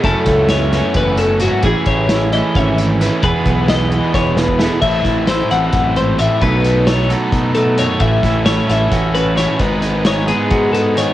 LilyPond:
<<
  \new Staff \with { instrumentName = "Clean electric guitar" } { \time 7/8 \key a \lydian \tempo 4 = 132 a'4 cis''4 b'8 a'8 fis'8 | gis'8 cis''4 dis''8 e''8 r4 | b'4 dis''4 cis''8 b'8 gis'8 | e''4 c''8 fis''4 c''8 e''8 |
b'4 cis''8 r4 a'8 cis''8 | e''4 cis''8 e''4 b'8 cis''8 | b'4 cis''8 gis'4 a'8 cis''8 | }
  \new Staff \with { instrumentName = "Overdriven electric guitar" } { \time 7/8 \key a \lydian <fis a cis' fis'>4. <fis a cis' fis'>4. <fis a cis' fis'>8 | <a, e a cis' e'>4. <a, e a cis' e'>4. <a, e a cis' e'>8 | <e gis b e'>4. <e gis b e'>4. <e gis b e'>8 | <a, e a c' e' a'>8 <a c' e' a'>8 <a c' e' a'>8 <a c' e' a'>4. <a, e a c' e' a'>8 |
<b, dis fis b dis' a'>8 <fis b dis' a'>8 <fis b dis' a'>8 <fis b dis' a'>4. <b, dis fis b dis' a'>8 | <a, e a cis' e' a'>8 <a cis' e' a'>8 <a cis' e' a'>8 <a cis' e' a'>4. <a, e a cis' e' a'>8 | <gis, dis gis b dis' gis'>8 <gis b dis' gis'>8 <gis b dis' gis'>8 <gis b dis' gis'>4. <gis, dis gis b dis' gis'>8 | }
  \new Staff \with { instrumentName = "Clean electric guitar" } { \time 7/8 \key a \lydian << { e'8 a8 b2~ b8 | <e cis' e' gis'>8 cis'8 e'4 cis'4 b'8 | gis'8 b4. b4 a'8 | r8 e'4 c'2 |
<fis a dis'>8 dis'4 a4 a8 dis'8 | r8 e'4 cis'8 fis'8 cis'8 e'8 | r8 dis'4 b8 fis'8 b8 dis'8 | } \\ { fis,4. fis8 e,8 fis,8 gis,8 | r4. e4 e4 | e,4. e4 b,4 | a,4. e8 fis,8 gis,8 a,8 |
b,4. fis4. fis,8 | a,4. e4. e8 | gis,4. gis4. dis8 | } >> }
  \new Staff \with { instrumentName = "Fingered electric bass" } { \clef bass \time 7/8 \key a \lydian fis,,16 r16 cis,4. fis,,4. | a,,16 r16 a,,4. gis,,4. | e,,16 r16 b,,4. e,,4. | a,,8 a,,4 a,,8 a,,4. |
b,,2 b,4. | a,,8 a,,4 a,,8 a,,4. | gis,,2 gis,4. | }
  \new DrumStaff \with { instrumentName = "Drums" } \drummode { \time 7/8 <hh bd>8 <hh bd>8 <hh sn>8 <hh sn>8 <hh bd>8 hh8 hh8 | <hh bd>8 <hh bd>8 <hh sn>8 hh8 <hh bd>8 hh8 <hh sn>8 | <hh bd>8 <hh bd>8 <hh sn>8 hh8 <bd sn>8 sn16 bd16 sn8 | <cymc bd>8 <hh bd sn>8 <hh sn>8 hh8 <hh bd sn>8 hh8 hh8 |
<hh bd>8 hh8 <hh sn>8 hh8 <hh bd>8 hh8 hh8 | <hh bd>8 <hh bd sn>8 <hh sn>8 <hh sn>8 <hh bd sn>8 hh8 <hh sn>8 | <hh bd>8 hh8 <hh sn>8 hh8 <hh bd>8 hh8 hh8 | }
>>